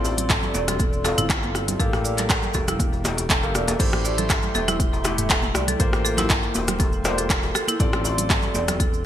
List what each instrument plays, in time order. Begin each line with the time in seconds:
Already playing: analog synth bass A1, felt piano C4 F4 A4 D5, analog synth pad A4 D5 C6
0.05 djembe tone, cabasa
0.17 closed hi-hat, low conga, cabasa
0.29 marimba A4, kick, cross-stick, clap, closed hi-hat, mid tom, muted conga, cabasa
0.43 djembe tone, low conga, cabasa
0.54 analog synth bass E1, marimba D5, djembe slap, high conga, cabasa
0.68 marimba A4, cross-stick, closed hi-hat, djembe tone, low conga, cabasa
0.79 marimba A4, kick, closed hi-hat, muted conga, high conga, cabasa
0.93 cabasa
1.04 felt piano C4 F4 A4 F5, marimba A4, cross-stick, djembe slap, djembe tone, cabasa
1.18 analog synth bass G1, marimba E4, closed hi-hat, mid tom, muted conga, cabasa
1.29 kick, clap, closed hi-hat, djembe tone, cabasa
1.43 high conga, cabasa
1.54 cross-stick, muted conga, cabasa
1.68 closed hi-hat, djembe tone, low conga, cabasa
1.79 analog synth bass A1, felt piano A#3 G4 A4 F5, marimba A4, analog synth pad G5, kick, closed hi-hat, mid tom, cabasa
1.93 cross-stick, muted conga, djembe tone, cabasa
2.05 marimba D5, cabasa
2.18 marimba A4, clap, closed hi-hat, low conga, cabasa
2.30 marimba A4, kick, cross-stick, clap, closed hi-hat, mid tom, djembe tone, cabasa
2.43 low conga, cabasa
2.54 analog synth bass E1, marimba A4, kick, djembe slap, high conga, djembe tone, cabasa
2.68 marimba E4, cross-stick, closed hi-hat, low conga, cabasa
2.80 kick, closed hi-hat, muted conga, high conga, cabasa
2.93 djembe tone, cabasa
3.04 cross-stick, djembe slap, high conga, cabasa
3.17 closed hi-hat, muted conga, djembe tone, cabasa
3.30 marimba A4, kick, clap, closed hi-hat, cabasa
3.43 analog synth bass G1, felt piano A#3 G4 A4 F5, cabasa
3.55 analog synth bass E1, marimba D5, cross-stick, muted conga, djembe tone, cabasa
3.68 marimba A4, closed hi-hat, djembe slap, high conga, cabasa
3.80 analog synth bass A1, felt piano A3 E4 G4 C5, marimba A4, analog synth pad A4 E5 G5 C6, kick, closed hi-hat, mid tom, crash, cabasa
3.93 cross-stick, muted conga, cabasa
4.05 marimba D5, djembe tone, cabasa
4.18 marimba A4, closed hi-hat, low conga, cabasa
4.29 marimba A4, kick, cross-stick, clap, closed hi-hat, mid tom, muted conga, djembe tone, cabasa
4.43 low conga, cabasa
4.55 analog synth bass E1, marimba A4, djembe slap, high conga, cabasa
4.68 marimba E4, cross-stick, closed hi-hat, djembe tone, low conga, cabasa
4.80 kick, closed hi-hat, muted conga, high conga, cabasa
4.93 djembe tone, cabasa
5.04 felt piano A3 E4 G4 E5, cross-stick, djembe slap, cabasa
5.18 closed hi-hat, mid tom, muted conga, cabasa
5.30 marimba A4, kick, clap, closed hi-hat, djembe tone, cabasa
5.43 high conga, cabasa
5.54 analog synth bass C2, marimba D5, cross-stick, muted conga, djembe tone, cabasa
5.68 marimba A4, closed hi-hat, low conga, cabasa
5.80 analog synth bass A1, analog synth pad A#3 C6, felt piano A#3 F4 G4 C5, marimba A4, kick, closed hi-hat, mid tom, cabasa
5.93 cross-stick, muted conga, djembe tone, cabasa
6.05 marimba A4, cabasa
6.17 marimba E4, clap, closed hi-hat, djembe tone, low conga, cabasa
6.29 kick, cross-stick, clap, closed hi-hat, mid tom, muted conga, cabasa
6.43 cabasa
6.55 analog synth bass E1, djembe slap, djembe tone, high conga, cabasa
6.68 cross-stick, closed hi-hat, low conga, cabasa
6.79 marimba A4, kick, closed hi-hat, muted conga, djembe tone, high conga, cabasa
6.93 cabasa
7.04 felt piano A#3 F4 G4 C5, marimba D5, cross-stick, djembe slap, high conga, cabasa
7.18 marimba A4, closed hi-hat, muted conga, djembe tone, cabasa
7.30 kick, clap, closed hi-hat, cabasa
7.43 djembe tone, cabasa
7.55 marimba A4, cross-stick, muted conga, cabasa
7.68 marimba E4, closed hi-hat, high conga, cabasa
7.80 analog synth bass A1, felt piano C4 F4 A4 D5, analog synth pad A4 D5, kick, closed hi-hat, mid tom, djembe tone, cabasa
7.93 cross-stick, muted conga, cabasa
8.05 djembe tone, cabasa
8.18 closed hi-hat, low conga, cabasa
8.30 marimba A4, kick, cross-stick, clap, closed hi-hat, mid tom, cabasa
8.42 djembe tone, low conga, cabasa
8.54 analog synth bass E1, marimba D5, djembe slap, high conga, cabasa
8.68 marimba A4, cross-stick, closed hi-hat, djembe tone, low conga, cabasa
8.80 marimba A4, kick, closed hi-hat, muted conga, high conga, cabasa
8.94 cabasa